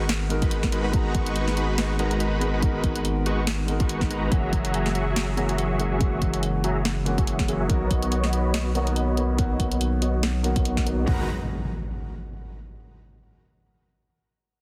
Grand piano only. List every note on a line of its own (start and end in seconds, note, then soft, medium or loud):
0.00 0.29 G#3 medium
0.00 0.30 B3 medium
0.00 0.30 D#4 medium
0.00 0.31 F#4 medium
0.00 0.31 A#4 loud
0.29 0.70 G#3 medium
0.29 0.70 B3 medium
0.29 0.70 D#4 medium
0.29 0.70 F#4 medium
0.29 0.71 A#4 medium
0.71 0.80 G#3 medium
0.71 0.80 B3 medium
0.71 0.80 D#4 medium
0.71 0.80 F#4 medium
0.71 0.81 A#4 medium
0.91 1.96 G#3 medium
0.91 1.96 B3 medium
0.91 1.97 D#4 medium
0.91 1.97 F#4 medium
0.96 1.98 A#5 loud
1.98 2.39 G#3 medium
1.98 2.39 B3 medium
1.98 2.39 D#4 medium
1.98 2.40 F#4 medium
1.98 2.40 A#4 medium
2.40 2.49 G#3 medium
2.40 2.49 B3 medium
2.40 2.49 D#4 medium
2.40 2.49 F#4 medium
2.40 2.50 A#4 medium
2.61 3.65 G#3 medium
2.61 3.65 B3 medium
2.61 3.66 D#4 medium
2.61 3.66 F#4 medium
2.61 3.67 A#4 loud
3.66 4.28 G#3 medium
3.66 4.29 B3 medium
3.66 4.29 D#4 medium
3.66 4.30 F#4 medium
3.66 4.30 A#4 medium
4.29 5.34 E3 medium
4.29 5.34 G#3 medium
4.29 5.35 A#3 medium
4.29 5.35 C#4 medium
4.29 5.36 F#4 loud
5.36 5.77 E3 medium
5.36 5.77 G#3 medium
5.36 5.77 A#3 medium
5.36 5.78 C#4 medium
5.36 5.78 F#4 medium
5.78 5.87 E3 medium
5.78 5.87 G#3 medium
5.78 5.87 A#3 medium
5.78 5.87 C#4 medium
5.78 5.88 F#4 medium
5.99 7.03 E3 medium
5.99 7.04 G#3 medium
5.99 7.04 A#3 medium
5.99 7.05 C#4 medium
6.03 7.05 F#4 loud
7.05 7.46 E3 medium
7.05 7.46 G#3 medium
7.05 7.46 A#3 medium
7.05 7.47 C#4 medium
7.05 7.47 F#4 loud
7.47 7.56 E3 medium
7.47 7.56 G#3 medium
7.47 7.56 A#3 medium
7.47 7.56 C#4 medium
7.47 7.57 F#4 medium
7.67 8.72 D#3 medium
7.67 8.72 F#3 medium
7.67 8.73 B3 medium
7.67 8.73 A#4 medium
7.71 8.74 F#4 loud
8.74 9.15 D#3 medium
8.74 9.15 F#3 medium
8.74 9.15 A#3 medium
8.74 9.16 B3 medium
8.74 9.16 F#4 loud
9.16 9.25 D#3 medium
9.16 9.25 F#3 medium
9.16 9.25 A#3 medium
9.16 9.25 B3 medium
9.16 9.26 F#4 medium
9.36 10.41 D#3 medium
9.36 10.41 F#3 medium
9.36 10.42 A#3 medium
9.36 10.42 B3 medium
9.40 10.43 F#4 loud
10.43 10.84 D#3 medium
10.43 10.84 F#3 medium
10.43 10.84 A#3 medium
10.43 10.85 B3 medium
10.43 10.85 F#4 medium
10.85 10.94 D#3 medium
10.85 10.94 F#3 medium
10.85 10.94 A#3 medium
10.85 10.94 B3 medium
10.85 10.95 F#4 medium
11.04 11.22 G#3 medium
11.04 11.23 B3 medium
11.04 11.24 D#4 medium
11.09 11.25 F#4 medium
11.09 11.25 A#4 medium